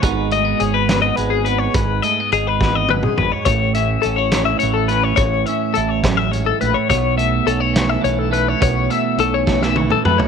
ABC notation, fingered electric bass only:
X:1
M:6/8
L:1/16
Q:3/8=70
K:G#phr
V:1 name="Fingered electric bass" clef=bass
G,,,4 G,,,4 G,,,4 | G,,,2 z2 G,,,6 G,,, z | A,,,4 A,,,4 A,,,4 | A,,,2 z2 A,,,6 ^A,,, z |
B,,,4 B,,,4 B,,,4 | B,,,2 z2 B,,,6 F,, z |]